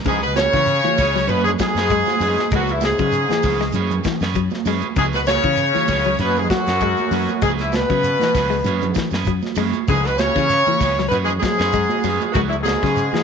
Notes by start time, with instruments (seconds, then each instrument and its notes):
0.04 fingered electric bass C#2, trombone section G#2, clean electric guitar C#3 E3 B3 C#4 G#4, tenor saxophone G#3, horn section G#4, kick, closed hi-hat, low conga, shekere
0.22 trombone section B2, tenor saxophone B3, horn section B4, closed hi-hat, shekere
0.36 trombone section C#3, tenor saxophone C#4, horn section C#5, snare, closed hi-hat, high conga, shekere
0.52 fingered electric bass C#3, clean electric guitar E3 B3 G#4, kick, snare, closed hi-hat, shekere
0.66 closed hi-hat, shekere
0.83 clean electric guitar E3, muted fingered electric bass stroke, closed hi-hat, high conga, shekere
0.98 fingered electric bass C#2, clean electric guitar E3 B3 C#4 G#4, kick, open hi-hat, shekere
1.15 clean electric guitar F#3, snare, shekere
1.27 fingered electric bass F#2, trombone section B2, clean electric guitar E3 B3 C#4 G#4, horn section B4, closed hi-hat, high conga, shekere
1.32 tenor saxophone B3
1.44 trombone section G#2, tenor saxophone G#3, horn section G#4, low conga, shekere
1.58 trombone section G#2, clean electric guitar F#3, tenor saxophone G#3, horn section G#4, kick, snare, closed hi-hat, high conga, shekere
1.75 fingered electric bass F#2, clean electric guitar B3 C#4 G#4, snare, closed hi-hat, shekere
1.89 clean electric guitar G#3, kick, closed hi-hat, shekere
2.05 snare, closed hi-hat, high conga, shekere
2.20 fingered electric bass F#2, clean electric guitar E3 B3 C#4 G#4, muted clean electric guitar stroke, open hi-hat, high conga, shekere
2.37 snare, closed hi-hat, high conga, shekere
2.51 fingered electric bass C#2, trombone section F#2, clean electric guitar E3 G#3 B3 C#4, tenor saxophone B3, kick, closed hi-hat, low conga, shekere
2.55 horn section F#4, clean electric guitar G#4
2.67 trombone section E2, tenor saxophone E3, closed hi-hat, shekere
2.72 horn section E4
2.81 trombone section G#2, snare, closed hi-hat, high conga, shekere
2.85 tenor saxophone G#3, horn section G#4
2.98 fingered electric bass C#3, clean electric guitar F#3 B3 C#4 G#4, kick, closed hi-hat, shekere
3.12 closed hi-hat, shekere
3.29 clean electric guitar E3, muted fingered electric bass stroke, snare, closed hi-hat, high conga, shekere
3.43 fingered electric bass C#2, clean electric guitar E3 B3 C#4 G#4, kick, open hi-hat, low conga, shekere
3.59 clean electric guitar G#3, snare, shekere
3.72 fingered electric bass F#2, clean electric guitar B3 C#4 G#4, muted clean electric guitar stroke, closed hi-hat, high conga, shekere
3.90 closed hi-hat, low conga, shekere
4.04 clean electric guitar E3, kick, snare, closed hi-hat, high conga, shekere
4.20 fingered electric bass F#2, clean electric guitar B3 C#4 G#4, snare, shekere
4.34 clean electric guitar F#3, kick, closed hi-hat, shekere
4.50 snare, high conga, shekere
4.65 fingered electric bass F#2, clean electric guitar E3 G#3 B3 C#4 G#4, open hi-hat, shekere
4.81 closed hi-hat, high conga, shekere
4.96 fingered electric bass C#2, trombone section G#2, clean electric guitar C#3 E3 B3 C#4 G#4, horn section G#4, kick, closed hi-hat, low conga, shekere
5.00 tenor saxophone G#3
5.12 trombone section B2, horn section B4, snare, closed hi-hat, shekere
5.19 tenor saxophone B3
5.26 trombone section C#3, horn section C#5, snare, closed hi-hat, high conga, shekere
5.33 tenor saxophone C#4
5.42 fingered electric bass C#3, clean electric guitar E3 C#4 G#4, kick, closed hi-hat, shekere
5.47 clean electric guitar B3
5.57 closed hi-hat, shekere
5.74 clean electric guitar E3, muted fingered electric bass stroke, closed hi-hat, high conga, shekere
5.88 fingered electric bass C#2, clean electric guitar E3 B3 C#4 G#4, kick, open hi-hat, low conga, shekere
6.04 clean electric guitar F#3, shekere
6.19 fingered electric bass F#2, clean electric guitar E3 B3 C#4 G#4, horn section B4, closed hi-hat, high conga, shekere
6.24 trombone section B2, tenor saxophone B3
6.36 horn section G#4, low conga, shekere
6.41 trombone section G#2, tenor saxophone G#3
6.50 clean electric guitar F#3, horn section F#4, kick, snare, closed hi-hat, high conga, shekere
6.54 trombone section F#2, tenor saxophone F#3
6.66 fingered electric bass F#2, clean electric guitar B3 C#4 G#4, snare, closed hi-hat, shekere
6.80 clean electric guitar G#3, kick, closed hi-hat, shekere
6.97 closed hi-hat, high conga, shekere
7.11 fingered electric bass F#2, clean electric guitar E3 F#3 B3 C#4 G#4, open hi-hat, shekere
7.28 closed hi-hat, high conga, shekere
7.42 fingered electric bass C#2, trombone section G#2, clean electric guitar E3 G#3 B3 C#4 G#4, horn section G#4, kick, closed hi-hat, low conga, shekere
7.47 tenor saxophone G#3
7.59 trombone section E2, horn section E4, snare, closed hi-hat, shekere
7.64 tenor saxophone E3
7.72 trombone section B2, snare, closed hi-hat, high conga, shekere
7.76 tenor saxophone B3, horn section B4
7.90 fingered electric bass C#3, clean electric guitar F#3 B3 C#4 G#4, kick, closed hi-hat, shekere
8.03 closed hi-hat, shekere
8.19 clean electric guitar E3, muted fingered electric bass stroke, snare, closed hi-hat, high conga, shekere
8.34 fingered electric bass C#2, clean electric guitar E3 B3 C#4 G#4, kick, snare, open hi-hat, low conga, shekere
8.50 clean electric guitar G#3, shekere
8.64 fingered electric bass F#2, clean electric guitar E3 B3 C#4 G#4, closed hi-hat, high conga, shekere
8.81 closed hi-hat, low conga, shekere
8.95 clean electric guitar E3, kick, snare, closed hi-hat, high conga, shekere
9.11 fingered electric bass F#2, clean electric guitar B3 G#4, snare, shekere
9.24 clean electric guitar F#3, kick, closed hi-hat, shekere
9.42 snare, high conga, shekere
9.55 fingered electric bass F#2, clean electric guitar E3 G#3 B3 C#4 G#4, open hi-hat, high conga, shekere
9.73 closed hi-hat, high conga, shekere
9.88 fingered electric bass C#2, trombone section G#2, clean electric guitar C#3 E3 B3 C#4 G#4, tenor saxophone G#3, horn section G#4, kick, closed hi-hat, low conga, shekere
10.04 trombone section B2, tenor saxophone B3, horn section B4, snare, closed hi-hat, shekere
10.16 trombone section C#3, tenor saxophone C#4, horn section C#5, snare, closed hi-hat, high conga, shekere
10.36 fingered electric bass C#3, clean electric guitar E3 B3 C#4 G#4, kick, snare, closed hi-hat, shekere
10.49 snare, closed hi-hat, shekere
10.66 clean electric guitar E3, muted fingered electric bass stroke, closed hi-hat, high conga, shekere
10.80 fingered electric bass C#2, clean electric guitar E3 B3 C#4 G#4, kick, snare, open hi-hat, low conga, shekere
10.98 clean electric guitar F#3, snare, shekere
11.08 fingered electric bass F#2, trombone section B2, tenor saxophone B3, horn section B4, muted clean electric guitar stroke, closed hi-hat, shekere
11.12 clean electric guitar B3 C#4 G#4, high conga
11.25 trombone section G#2, tenor saxophone G#3, horn section G#4, low conga
11.29 shekere
11.37 trombone section G#2, tenor saxophone G#3, horn section G#4
11.42 clean electric guitar F#3, kick, snare, closed hi-hat, high conga, shekere
11.59 fingered electric bass F#2, clean electric guitar B3 C#4 G#4, snare, closed hi-hat, shekere
11.73 clean electric guitar G#3, kick, closed hi-hat, shekere
11.89 closed hi-hat, high conga, shekere
12.04 fingered electric bass F#2, clean electric guitar E3 F#3 B3 C#4 G#4, open hi-hat, shekere
12.21 closed hi-hat, high conga, shekere
12.31 fingered electric bass C#2, trombone section F#2, clean electric guitar E3, tenor saxophone B3, horn section F#4, shekere
12.35 clean electric guitar G#3 B3 C#4 G#4, kick, closed hi-hat, low conga
12.48 trombone section E2, tenor saxophone E3, horn section E4, shekere
12.52 closed hi-hat
12.60 trombone section G#2, horn section G#4
12.65 tenor saxophone G#3, snare, closed hi-hat, high conga, shekere
12.83 fingered electric bass C#3, clean electric guitar F#3 B3 C#4 G#4, kick, snare, closed hi-hat, shekere
12.96 closed hi-hat, shekere
13.12 clean electric guitar E3, muted fingered electric bass stroke, snare, closed hi-hat, high conga, shekere